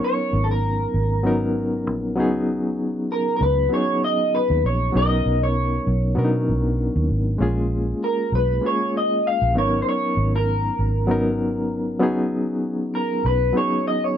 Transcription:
Already playing: reed electric piano F#3 B3 C#4 D#4 A#4
0.04 clean electric guitar C#5
0.33 fingered electric bass G#1
0.44 clean electric guitar A4
0.51 clean electric guitar A#4
0.94 fingered electric bass G#1
1.23 reed electric piano F#3 B3 C#4 D#4 A#4
1.87 fingered electric bass A#1
2.16 fingered electric bass C#2, reed electric piano F#3 B3 C#4 D#4
2.20 reed electric piano G#4
3.12 clean electric guitar A#4
3.36 clean electric guitar A#4
3.41 fingered electric bass C#2, clean electric guitar B4
3.69 reed electric piano F#3 B3 C#4 D#4 G#4
3.74 clean electric guitar C#5
4.04 clean electric guitar D#5
4.35 clean electric guitar B4
4.50 fingered electric bass D#2
4.64 fingered electric bass A#1, clean electric guitar C#5
4.92 fingered electric bass B1, reed electric piano F#3 B3 C#4 D#4 G#4
4.97 clean electric guitar D#5
5.03 reed electric piano A#4
5.26 fingered electric bass B1
5.43 clean electric guitar C#5
5.87 fingered electric bass B1
6.15 fingered electric bass B2, reed electric piano F#3 B3 C#4 D4 A#4
6.25 reed electric piano D#4
6.49 fingered electric bass B1
6.96 fingered electric bass D#2
7.10 fingered electric bass G#1
7.38 fingered electric bass A#1, reed electric piano G#3 A#3 C#4 F4 G#4
8.04 clean electric guitar A#4
8.32 fingered electric bass B1, clean electric guitar B4
8.61 reed electric piano G#3 A#3 C#4 F4
8.65 reed electric piano G#4, clean electric guitar C#5
8.97 clean electric guitar D#5
9.27 clean electric guitar F5
9.42 fingered electric bass A#1
9.54 fingered electric bass G#1, reed electric piano F#3 B3 C#4 D#4
9.58 reed electric piano A#4, clean electric guitar C#5
9.82 clean electric guitar C5
9.89 clean electric guitar C#5
10.17 fingered electric bass G#1
10.36 clean electric guitar A#4
10.79 fingered electric bass G#1
11.07 reed electric piano F#3 B3 C#4 D#4 A#4
12.00 fingered electric bass C#2, reed electric piano F#3 B3 C#4 D#4 G#4
12.95 clean electric guitar A#4
13.25 fingered electric bass B1, clean electric guitar B4
13.53 reed electric piano F#3 B3 C#4 D#4
13.57 reed electric piano G#4, clean electric guitar C#5
13.88 clean electric guitar D#5
14.04 clean electric guitar C#5

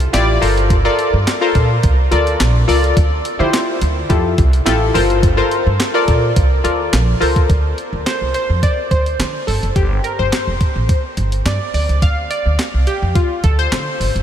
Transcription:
0.00 closed hi-hat
0.13 upright bass A1, analog polysynth E4 F4 G4 D5, snare, clap, closed hi-hat
0.41 upright bass G1, analog polysynth F4 A4 A#4 C5, open hi-hat
0.57 closed hi-hat
0.70 kick, closed hi-hat
0.85 analog polysynth F4 A4 A#4 D5
0.99 closed hi-hat
1.14 upright bass G2
1.27 snare, clap, closed hi-hat
1.41 analog polysynth F4 A4 A#4 C5
1.55 upright bass A#2, kick, closed hi-hat
1.83 upright bass C2, kick, closed hi-hat
2.11 upright bass D2, analog polysynth F4 A4 A#4 D5, closed hi-hat
2.27 closed hi-hat
2.40 upright bass A#1, snare, clap, closed hi-hat
2.68 upright bass C#2, analog polysynth F4 A4 A#4 D5, open hi-hat
2.84 closed hi-hat
2.97 upright bass D2, kick, closed hi-hat
3.25 closed hi-hat
3.39 upright bass D3, analog polysynth E4 F4 G4 C5
3.53 snare, clap, closed hi-hat
3.81 upright bass D2, closed hi-hat
4.09 upright bass F2, analog polysynth E4 F4 G4 A4, kick, closed hi-hat
4.38 upright bass C2, kick, closed hi-hat
4.53 closed hi-hat
4.66 upright bass A1, analog polysynth E4 F4 G4 A4, snare, clap, closed hi-hat
4.94 upright bass G1, analog polysynth F4 A4 A#4 C5, open hi-hat
5.10 closed hi-hat
5.23 kick, closed hi-hat
5.37 analog polysynth F4 A4 A#4 C5
5.51 closed hi-hat
5.67 upright bass G2
5.80 snare, clap, closed hi-hat
5.94 analog polysynth F4 A4 A#4 D5
6.08 upright bass A#2, kick, closed hi-hat
6.36 upright bass C2, kick, closed hi-hat
6.64 upright bass D2, analog polysynth F4 A4 A#4 D5, closed hi-hat
6.93 upright bass A#1, snare, clap, closed hi-hat
7.20 upright bass C#2, analog polysynth F4 A4 A#4 C5, open hi-hat
7.36 kick, closed hi-hat
7.50 upright bass D2, kick, closed hi-hat
7.78 closed hi-hat
7.93 upright bass D2
8.06 analog polysynth C5, snare, clap, closed hi-hat
8.21 upright bass C2
8.34 analog polysynth C5, closed hi-hat
8.50 upright bass F2
8.63 analog polysynth D5, kick, closed hi-hat
8.91 upright bass D2, analog polysynth C5, kick, closed hi-hat
9.06 closed hi-hat
9.19 upright bass D3, snare, clap, closed hi-hat
9.47 upright bass G1, analog polysynth A4, open hi-hat
9.63 upright bass F#1, closed hi-hat
9.76 upright bass G1, analog polysynth G4, kick, closed hi-hat
10.04 analog polysynth A#4, closed hi-hat
10.19 upright bass G1, analog polysynth C5
10.32 snare, clap, closed hi-hat
10.47 upright bass F1
10.61 kick, closed hi-hat
10.76 upright bass A1
10.89 kick, closed hi-hat
11.17 upright bass G1, closed hi-hat
11.32 closed hi-hat
11.46 upright bass G2, analog polysynth D5, snare, clap, closed hi-hat
11.74 upright bass D2, analog polysynth D5, open hi-hat
11.89 upright bass C#2, closed hi-hat
12.02 upright bass D2, analog polysynth F5, kick, closed hi-hat
12.30 analog polysynth D5, closed hi-hat
12.46 upright bass D2
12.59 snare, clap, closed hi-hat
12.74 upright bass C2
12.87 analog polysynth G4, closed hi-hat
13.02 upright bass F2
13.15 analog polysynth F4, kick, closed hi-hat
13.44 upright bass D2, analog polysynth A4, kick, closed hi-hat
13.59 analog polysynth C5, closed hi-hat
13.72 upright bass D3, snare, clap, closed hi-hat
14.00 upright bass G1, open hi-hat
14.15 upright bass F#1, closed hi-hat

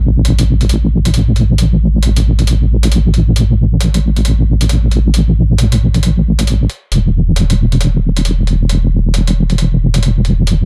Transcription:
Already playing: wobble bass A1
0.25 closed hi-hat
0.39 closed hi-hat
0.61 closed hi-hat
0.69 closed hi-hat
1.05 closed hi-hat
1.14 closed hi-hat
1.36 closed hi-hat
1.58 closed hi-hat
2.03 closed hi-hat
2.16 closed hi-hat
2.39 closed hi-hat
2.47 closed hi-hat
2.83 closed hi-hat
2.92 closed hi-hat
3.14 closed hi-hat
3.36 closed hi-hat
3.81 closed hi-hat
3.94 closed hi-hat
4.16 closed hi-hat
4.25 closed hi-hat
4.61 closed hi-hat
4.69 closed hi-hat
4.91 closed hi-hat
5.14 closed hi-hat
5.58 closed hi-hat
5.72 closed hi-hat
5.94 closed hi-hat
6.03 closed hi-hat
6.39 closed hi-hat
6.47 closed hi-hat
6.70 closed hi-hat
6.92 wobble bass E1, closed hi-hat
7.36 closed hi-hat
7.50 closed hi-hat
7.72 closed hi-hat
7.81 closed hi-hat
8.17 closed hi-hat
8.25 closed hi-hat
8.47 closed hi-hat
8.69 closed hi-hat
9.14 closed hi-hat
9.27 closed hi-hat
9.50 closed hi-hat
9.58 closed hi-hat
9.94 closed hi-hat
10.03 closed hi-hat
10.25 closed hi-hat
10.47 closed hi-hat

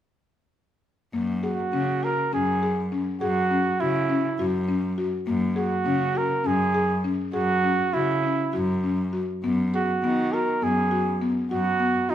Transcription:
1.13 cello F#2, marimba A#3
1.43 flugelhorn F#4, marimba G#4
1.73 cello C#3, marimba C#4
2.03 marimba F#4, flugelhorn A#4
2.33 cello F#2, marimba C#4, flugelhorn G#4
2.63 marimba G#4
2.92 marimba C#4
3.21 cello F#2, flugelhorn F#4, marimba G#4
3.51 marimba C#4
3.80 cello C#3, flugelhorn E4, marimba F#4
4.09 marimba C#4
4.39 cello F#2, marimba F#4
4.68 marimba C#4
4.98 marimba F#4
5.27 cello F#2, marimba A#3
5.56 flugelhorn F#4, marimba G#4
5.85 cello C#3, marimba C#4
6.15 marimba F#4, flugelhorn A#4
6.44 cello F#2, marimba C#4, flugelhorn G#4
6.74 marimba G#4
7.04 marimba C#4
7.33 cello F#2, flugelhorn F#4, marimba G#4
7.64 marimba C#4
7.93 cello C#3, flugelhorn E4, marimba F#4
8.23 marimba C#4
8.53 cello F#2, marimba F#4
8.84 marimba C#4
9.13 marimba F#4
9.44 cello F#2, marimba B3
9.74 flugelhorn F#4, marimba G#4
10.03 cello D#3, marimba B3
10.33 marimba F#4, flugelhorn A#4
10.62 cello F#2, marimba B3, flugelhorn G#4
10.91 marimba F#4
11.22 marimba B3
11.51 cello F#2, marimba F#4, flugelhorn F#4
11.80 marimba B3
12.09 cello D#3, flugelhorn D#4, marimba F#4

